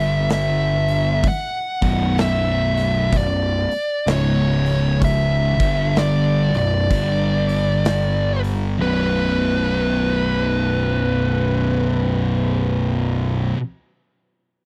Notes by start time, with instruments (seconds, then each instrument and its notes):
Already playing: picked electric bass G1, distorted electric guitar G2 D3 G3, lead electric guitar E5
0.30 lead electric guitar E5, snare, open hi-hat
0.88 open hi-hat
1.24 kick, open hi-hat
1.28 lead electric guitar F#5
1.82 picked electric bass B0, distorted electric guitar B1 F#2 B2, kick, open hi-hat
2.18 lead electric guitar E5, snare, open hi-hat
2.77 snare, open hi-hat
3.12 picked electric bass B0, distorted electric guitar B1 F#2, kick, open hi-hat
3.16 lead electric guitar D5
3.71 open hi-hat
4.06 picked electric bass C#1, distorted electric guitar C#2 G#2 C#3, snare, open hi-hat
4.11 lead electric guitar C#5
4.66 open hi-hat
5.02 lead electric guitar E5, kick, open hi-hat
5.59 picked electric bass G1, distorted electric guitar G2 D3 G3, kick, open hi-hat
5.96 lead electric guitar D5, snare, open hi-hat
6.53 picked electric bass B0, distorted electric guitar B1 F#2, lead electric guitar D5, open hi-hat
6.90 picked electric bass G1, distorted electric guitar G2 D3 G3, kick, open hi-hat
7.49 open hi-hat
7.85 snare, open hi-hat
8.44 open hi-hat
8.79 picked electric bass B0, distorted electric guitar B1 F#2 B2, lead electric guitar B4